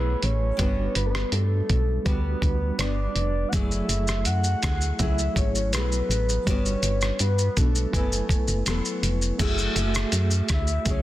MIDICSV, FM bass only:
0, 0, Header, 1, 2, 480
1, 0, Start_track
1, 0, Tempo, 733496
1, 389, Time_signature, 4, 2, 24, 8
1, 7211, End_track
2, 0, Start_track
2, 0, Title_t, "FM bass"
2, 0, Program_c, 0, 39
2, 0, Note_on_c, 0, 35, 83
2, 103, Note_off_c, 0, 35, 0
2, 150, Note_on_c, 0, 33, 104
2, 342, Note_off_c, 0, 33, 0
2, 387, Note_on_c, 0, 31, 96
2, 580, Note_off_c, 0, 31, 0
2, 625, Note_on_c, 0, 31, 90
2, 819, Note_off_c, 0, 31, 0
2, 865, Note_on_c, 0, 43, 97
2, 1059, Note_off_c, 0, 43, 0
2, 1110, Note_on_c, 0, 35, 96
2, 1302, Note_off_c, 0, 35, 0
2, 1347, Note_on_c, 0, 38, 92
2, 1540, Note_off_c, 0, 38, 0
2, 1582, Note_on_c, 0, 38, 85
2, 1777, Note_off_c, 0, 38, 0
2, 1823, Note_on_c, 0, 31, 90
2, 2018, Note_off_c, 0, 31, 0
2, 2064, Note_on_c, 0, 29, 88
2, 2258, Note_off_c, 0, 29, 0
2, 2310, Note_on_c, 0, 30, 98
2, 2502, Note_off_c, 0, 30, 0
2, 2543, Note_on_c, 0, 30, 88
2, 2785, Note_on_c, 0, 42, 99
2, 2794, Note_off_c, 0, 30, 0
2, 2979, Note_off_c, 0, 42, 0
2, 3033, Note_on_c, 0, 38, 93
2, 3224, Note_off_c, 0, 38, 0
2, 3270, Note_on_c, 0, 37, 92
2, 3462, Note_off_c, 0, 37, 0
2, 3508, Note_on_c, 0, 32, 83
2, 3746, Note_on_c, 0, 35, 89
2, 3756, Note_off_c, 0, 32, 0
2, 3940, Note_off_c, 0, 35, 0
2, 3986, Note_on_c, 0, 33, 93
2, 4180, Note_off_c, 0, 33, 0
2, 4234, Note_on_c, 0, 31, 100
2, 4424, Note_off_c, 0, 31, 0
2, 4465, Note_on_c, 0, 31, 103
2, 4659, Note_off_c, 0, 31, 0
2, 4712, Note_on_c, 0, 43, 99
2, 4903, Note_off_c, 0, 43, 0
2, 4955, Note_on_c, 0, 35, 98
2, 5145, Note_off_c, 0, 35, 0
2, 5190, Note_on_c, 0, 30, 91
2, 5382, Note_off_c, 0, 30, 0
2, 5425, Note_on_c, 0, 30, 44
2, 5474, Note_off_c, 0, 30, 0
2, 5548, Note_on_c, 0, 30, 88
2, 5645, Note_off_c, 0, 30, 0
2, 5670, Note_on_c, 0, 28, 93
2, 5766, Note_off_c, 0, 28, 0
2, 5907, Note_on_c, 0, 29, 96
2, 6100, Note_off_c, 0, 29, 0
2, 6147, Note_on_c, 0, 30, 99
2, 6340, Note_off_c, 0, 30, 0
2, 6384, Note_on_c, 0, 30, 88
2, 6578, Note_off_c, 0, 30, 0
2, 6625, Note_on_c, 0, 42, 91
2, 6819, Note_off_c, 0, 42, 0
2, 6868, Note_on_c, 0, 38, 83
2, 7061, Note_off_c, 0, 38, 0
2, 7106, Note_on_c, 0, 37, 102
2, 7211, Note_off_c, 0, 37, 0
2, 7211, End_track
0, 0, End_of_file